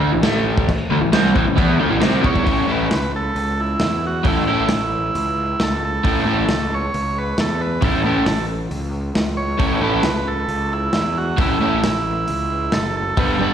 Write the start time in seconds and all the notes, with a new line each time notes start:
Already playing: D3 A3 D4
0.12 A1 A2 E3
0.23 A1 A2 E3 A3, snare, crash
0.58 kick
0.69 muted picked electric bass stroke, muted overdriven electric guitar stroke, kick, crash
0.90 D2 D3 A3
1.01 A1 A2 E3
1.12 C2 C3 G3 C4, snare, crash
1.35 A1 A2 E3, kick
1.47 A1 A2 E3
1.57 E2 E3 B3 E4, kick, crash
1.80 D2 D3 A3
1.90 A1 A2 E3
2.00 C2 C3 G3 C4, snare, crash
2.22 E2 E3 B3 E4, kick
2.26 C#5
2.36 kick
2.44 A1 A2 A3 C#4 E4 A4, kick, open hi-hat
2.66 A2 A3 C#4 E4 A4
2.71 B4
2.91 C#2, snare, open hi-hat
3.16 A4
3.35 C#2, open hi-hat
3.61 E4
3.80 E2, snare, open hi-hat
4.07 F#4
4.24 A1 A2 A3 C#4 E4 A4, kick, open hi-hat
4.28 E4
4.47 A2 A3 C#4 E4 A4
4.69 A1, snare, open hi-hat
5.15 C#2, open hi-hat
5.60 C#2 A4, snare, open hi-hat
5.85 A4
6.04 A1 A2 A3 C#4 E4 A4, kick, open hi-hat
6.25 A2 A3 C#4 E4 A4
6.49 C#2, snare, open hi-hat
6.74 C#5
6.94 C#2, open hi-hat
7.18 B4
7.38 E2 A4, snare, open hi-hat
7.61 B4
7.81 A1 A2 A3 C#4 E4 A4, kick, open hi-hat
8.04 A2 A3 C#4 E4 A4
8.26 A1, snare, open hi-hat
8.71 C#2, open hi-hat
9.15 C#2, snare, open hi-hat
9.37 C#5
9.58 A1 A2 A3 C#4 E4 A4, kick, open hi-hat
9.75 C#5
9.81 A2 A3 C#4 E4 A4 B4
10.03 C#2, snare, open hi-hat
10.28 A4
10.48 C#2, open hi-hat
10.73 E4
10.93 E2, snare, open hi-hat
11.18 F#4
11.37 A1 A2 A3 C#4 E4 A4, kick, open hi-hat
11.61 A2 A3 C#4 E4 A4
11.84 A1, snare, open hi-hat
12.28 C#2, open hi-hat
12.72 F#1 A4, snare, open hi-hat
12.97 A4
13.17 G1 G3 B3 D4 B4, kick, open hi-hat
13.39 G3 B3 D4 B4